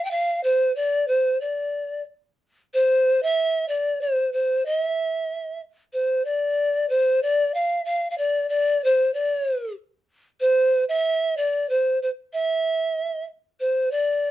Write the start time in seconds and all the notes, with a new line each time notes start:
0.05 G5
0.11 F5
0.44 C5
0.76 D5
1.08 C5
1.41 D5
2.74 C5
3.23 E5
3.68 D5
4.01 C5
4.33 C5
4.66 D#5
4.79 E5
5.93 C5
6.25 D5
6.89 C5
7.22 D5
7.54 F5
7.85 F5
8.11 F5
8.18 D5
8.49 D5
8.84 C5
9.14 D5
10.40 C5
10.89 E5
11.37 D5
11.69 C5
12.02 C5
12.33 E5
13.60 C5
13.91 D5